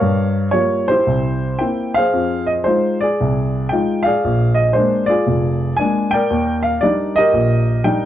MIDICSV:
0, 0, Header, 1, 2, 480
1, 0, Start_track
1, 0, Key_signature, -3, "major"
1, 0, Tempo, 529101
1, 14, Time_signature, 4, 2, 24, 8
1, 3374, Tempo, 516351
1, 7403, End_track
2, 0, Start_track
2, 0, Title_t, "Grand piano"
2, 0, Program_c, 0, 0
2, 0, Note_on_c, 0, 70, 56
2, 0, Note_on_c, 0, 73, 61
2, 0, Note_on_c, 0, 77, 83
2, 12, Note_on_c, 0, 43, 63
2, 426, Note_off_c, 0, 43, 0
2, 440, Note_off_c, 0, 77, 0
2, 452, Note_off_c, 0, 73, 0
2, 465, Note_on_c, 0, 73, 74
2, 484, Note_on_c, 0, 55, 46
2, 492, Note_on_c, 0, 58, 40
2, 493, Note_on_c, 0, 65, 46
2, 776, Note_off_c, 0, 73, 0
2, 778, Note_off_c, 0, 70, 0
2, 798, Note_on_c, 0, 72, 86
2, 821, Note_on_c, 0, 67, 54
2, 825, Note_off_c, 0, 55, 0
2, 828, Note_on_c, 0, 64, 51
2, 829, Note_off_c, 0, 58, 0
2, 829, Note_off_c, 0, 65, 0
2, 967, Note_on_c, 0, 36, 52
2, 1391, Note_off_c, 0, 36, 0
2, 1439, Note_on_c, 0, 79, 69
2, 1447, Note_off_c, 0, 64, 0
2, 1457, Note_on_c, 0, 58, 42
2, 1459, Note_on_c, 0, 60, 37
2, 1460, Note_on_c, 0, 64, 46
2, 1468, Note_off_c, 0, 72, 0
2, 1752, Note_off_c, 0, 67, 0
2, 1764, Note_on_c, 0, 77, 89
2, 1785, Note_off_c, 0, 79, 0
2, 1792, Note_on_c, 0, 72, 53
2, 1796, Note_on_c, 0, 68, 54
2, 1800, Note_off_c, 0, 58, 0
2, 1801, Note_off_c, 0, 60, 0
2, 1802, Note_off_c, 0, 64, 0
2, 1935, Note_on_c, 0, 41, 59
2, 2220, Note_off_c, 0, 77, 0
2, 2236, Note_on_c, 0, 75, 72
2, 2282, Note_off_c, 0, 75, 0
2, 2355, Note_off_c, 0, 41, 0
2, 2382, Note_off_c, 0, 72, 0
2, 2395, Note_on_c, 0, 72, 75
2, 2408, Note_on_c, 0, 56, 44
2, 2414, Note_on_c, 0, 63, 40
2, 2419, Note_on_c, 0, 65, 49
2, 2707, Note_off_c, 0, 72, 0
2, 2713, Note_off_c, 0, 68, 0
2, 2727, Note_on_c, 0, 74, 83
2, 2749, Note_on_c, 0, 68, 57
2, 2753, Note_off_c, 0, 56, 0
2, 2755, Note_off_c, 0, 63, 0
2, 2758, Note_off_c, 0, 65, 0
2, 2907, Note_on_c, 0, 36, 60
2, 3316, Note_off_c, 0, 36, 0
2, 3349, Note_on_c, 0, 79, 77
2, 3377, Note_on_c, 0, 56, 43
2, 3383, Note_on_c, 0, 65, 49
2, 3385, Note_off_c, 0, 74, 0
2, 3385, Note_on_c, 0, 63, 41
2, 3659, Note_on_c, 0, 77, 85
2, 3665, Note_off_c, 0, 68, 0
2, 3689, Note_on_c, 0, 68, 59
2, 3689, Note_on_c, 0, 74, 59
2, 3697, Note_off_c, 0, 79, 0
2, 3717, Note_off_c, 0, 56, 0
2, 3720, Note_off_c, 0, 65, 0
2, 3721, Note_off_c, 0, 63, 0
2, 3860, Note_on_c, 0, 34, 62
2, 4142, Note_on_c, 0, 75, 80
2, 4175, Note_off_c, 0, 77, 0
2, 4275, Note_off_c, 0, 34, 0
2, 4304, Note_off_c, 0, 75, 0
2, 4315, Note_on_c, 0, 72, 75
2, 4335, Note_on_c, 0, 56, 45
2, 4338, Note_on_c, 0, 58, 43
2, 4345, Note_on_c, 0, 62, 51
2, 4609, Note_off_c, 0, 74, 0
2, 4613, Note_off_c, 0, 68, 0
2, 4623, Note_on_c, 0, 74, 83
2, 4650, Note_on_c, 0, 65, 61
2, 4653, Note_on_c, 0, 68, 57
2, 4655, Note_off_c, 0, 72, 0
2, 4670, Note_off_c, 0, 56, 0
2, 4671, Note_off_c, 0, 58, 0
2, 4675, Note_off_c, 0, 62, 0
2, 4813, Note_on_c, 0, 29, 55
2, 5226, Note_off_c, 0, 29, 0
2, 5276, Note_on_c, 0, 80, 81
2, 5290, Note_off_c, 0, 74, 0
2, 5303, Note_on_c, 0, 56, 50
2, 5304, Note_on_c, 0, 58, 41
2, 5304, Note_on_c, 0, 62, 53
2, 5570, Note_off_c, 0, 65, 0
2, 5571, Note_off_c, 0, 68, 0
2, 5595, Note_on_c, 0, 79, 91
2, 5614, Note_off_c, 0, 80, 0
2, 5620, Note_on_c, 0, 74, 68
2, 5621, Note_on_c, 0, 70, 63
2, 5633, Note_off_c, 0, 56, 0
2, 5634, Note_off_c, 0, 58, 0
2, 5634, Note_off_c, 0, 62, 0
2, 5777, Note_on_c, 0, 39, 66
2, 6076, Note_on_c, 0, 77, 80
2, 6097, Note_off_c, 0, 79, 0
2, 6188, Note_off_c, 0, 39, 0
2, 6231, Note_off_c, 0, 74, 0
2, 6243, Note_off_c, 0, 77, 0
2, 6245, Note_on_c, 0, 74, 82
2, 6262, Note_on_c, 0, 55, 49
2, 6264, Note_on_c, 0, 62, 46
2, 6269, Note_on_c, 0, 63, 53
2, 6536, Note_off_c, 0, 70, 0
2, 6569, Note_on_c, 0, 75, 102
2, 6577, Note_off_c, 0, 74, 0
2, 6591, Note_off_c, 0, 55, 0
2, 6591, Note_on_c, 0, 70, 63
2, 6593, Note_off_c, 0, 62, 0
2, 6595, Note_off_c, 0, 63, 0
2, 6597, Note_on_c, 0, 67, 64
2, 6731, Note_on_c, 0, 34, 58
2, 7150, Note_off_c, 0, 34, 0
2, 7174, Note_off_c, 0, 75, 0
2, 7206, Note_on_c, 0, 55, 50
2, 7206, Note_on_c, 0, 79, 80
2, 7213, Note_on_c, 0, 62, 42
2, 7214, Note_on_c, 0, 63, 54
2, 7403, Note_off_c, 0, 55, 0
2, 7403, Note_off_c, 0, 62, 0
2, 7403, Note_off_c, 0, 63, 0
2, 7403, Note_off_c, 0, 67, 0
2, 7403, Note_off_c, 0, 70, 0
2, 7403, Note_off_c, 0, 79, 0
2, 7403, End_track
0, 0, End_of_file